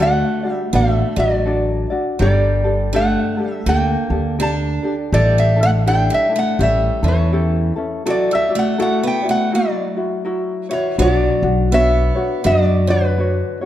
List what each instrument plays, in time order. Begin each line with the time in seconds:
Already playing: upright bass D2
0.00 steel-string acoustic guitar A3, ukulele D4 F#4 A4 D5, resonator guitar played with a steel bar F#5
0.43 ukulele D4 F#4 D5
0.51 steel-string acoustic guitar G3, resonator guitar played with a steel bar E5
0.73 upright bass A1, steel-string acoustic guitar A3, ukulele D4 F#4 A4 D5, resonator guitar played with a steel bar F5
0.92 resonator guitar played with a steel bar E5
1.16 upright bass A1, steel-string acoustic guitar F#3, ukulele D4 F#4 D5, resonator guitar played with a steel bar D5
1.45 ukulele D4 F#4 A4 D5
1.90 ukulele D4 F#4 D5
2.19 upright bass G1, steel-string acoustic guitar G3, ukulele D4 G4 A4 A#4, resonator guitar played with a steel bar D5
2.64 ukulele D4 G4 A4
2.93 steel-string acoustic guitar A3, ukulele D4 G4 A4, resonator guitar played with a steel bar F#5
3.37 ukulele D4 G4 A4
3.44 steel-string acoustic guitar G3
3.51 resonator guitar played with a steel bar E5
3.66 upright bass D2, steel-string acoustic guitar A#3, ukulele D4 G4 A4 A#4, resonator guitar played with a steel bar G5
4.10 upright bass D2, ukulele D4 G4 A4
4.39 ukulele D4 G4 A4 A#4, steel-string acoustic guitar D4, resonator guitar played with a steel bar A5
4.83 ukulele D4 G4 A4
5.12 upright bass A1, steel-string acoustic guitar G3, ukulele D4 E4 G4 A4, resonator guitar played with a steel bar D5
5.38 steel-string acoustic guitar G3, resonator guitar played with a steel bar E5
5.56 ukulele D4 E4 A4
5.63 steel-string acoustic guitar A3, resonator guitar played with a steel bar F#5
5.86 ukulele D4 E4 G4 A4, steel-string acoustic guitar D4, resonator guitar played with a steel bar G5
6.10 steel-string acoustic guitar G3, resonator guitar played with a steel bar E5
6.29 ukulele D4 E4 A4
6.36 steel-string acoustic guitar A3, resonator guitar played with a steel bar F#5
6.59 upright bass A1, steel-string acoustic guitar G3, ukulele C#4 E4 G4 A4
6.63 resonator guitar played with a steel bar E5
7.02 upright bass E2, steel-string acoustic guitar E3, ukulele C#4 E4 A4
7.08 resonator guitar played with a steel bar C#5
7.32 ukulele C#4 E4 G4 A4
7.76 ukulele C#4 E4 A4
8.06 steel-string acoustic guitar F#3, ukulele E4 F#4 A4 D5
8.10 resonator guitar played with a steel bar D5
8.31 steel-string acoustic guitar G3, resonator guitar played with a steel bar E5
8.49 ukulele E4 F#4 D5
8.55 steel-string acoustic guitar A3, resonator guitar played with a steel bar F#5
8.78 steel-string acoustic guitar A3, ukulele E4 F#4 A4 D5, resonator guitar played with a steel bar F#5
9.03 steel-string acoustic guitar B3, resonator guitar played with a steel bar G5
9.22 ukulele E4 F#4 D5
9.29 steel-string acoustic guitar A3, resonator guitar played with a steel bar F#5
9.51 steel-string acoustic guitar F#3, ukulele E4 F#4 A#4, resonator guitar played with a steel bar D5
9.97 ukulele E4 F#4
10.25 ukulele E4 F#4 A#4
10.69 steel-string acoustic guitar E3, ukulele E4 F#4 C#5
10.73 resonator guitar played with a steel bar C#5
10.98 upright bass B1, steel-string acoustic guitar F#3, ukulele D4 F#4 B4, resonator guitar played with a steel bar C#5
11.13 resonator guitar played with a steel bar D5
11.43 upright bass B1, ukulele D4 F#4
11.72 steel-string acoustic guitar B3, ukulele D4 F#4 B4 C#5, resonator guitar played with a steel bar E5
12.15 ukulele D4 F#4 C#5
12.44 upright bass F#2, steel-string acoustic guitar F#3, ukulele D4 F#4 B4, resonator guitar played with a steel bar D#5
12.63 resonator guitar played with a steel bar D5
12.87 steel-string acoustic guitar D3, ukulele D4 F#4 C#5, resonator guitar played with a steel bar B4
13.17 ukulele D4 F#4 B4 C#5
13.61 ukulele C#5